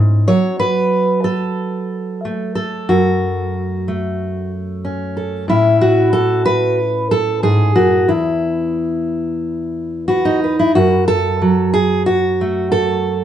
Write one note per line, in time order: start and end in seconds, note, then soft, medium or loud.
0.00 0.27 G#2 medium
0.00 0.62 C#4 soft
0.28 2.86 F#3 medium
0.28 0.59 C#5 medium
0.59 1.91 B4 medium
1.24 2.54 A4 medium
2.25 3.88 A3 soft
2.55 3.53 A4 medium
2.89 5.44 F#2 medium
2.89 4.51 F#4 medium
3.88 5.45 A3 soft
4.85 5.45 C#4 soft
5.17 5.45 A4 soft
5.48 8.08 A2 medium
5.48 8.05 C#4 soft
5.48 6.12 E4 medium
5.81 6.78 F#4 medium
6.13 6.45 A4 medium
6.46 7.11 B4 loud
7.11 7.43 A4 medium
7.43 7.75 G#2 medium
7.43 8.08 G#4 medium
7.76 8.08 F#2 medium
7.76 8.08 F#4 medium
8.08 10.75 E2 medium
8.08 10.07 E4 medium
10.08 10.43 F#4 medium
10.08 10.43 B4 soft
10.25 10.76 D#4 medium
10.44 10.59 B4 soft
10.59 10.75 E4 medium
10.75 13.24 F#2 medium
10.75 11.07 F#4 medium
11.08 11.73 A4 loud
11.42 13.24 F#3 medium
11.73 12.06 G#4 medium
12.06 12.71 F#4 loud
12.41 13.24 A3 soft
12.72 13.24 A4 loud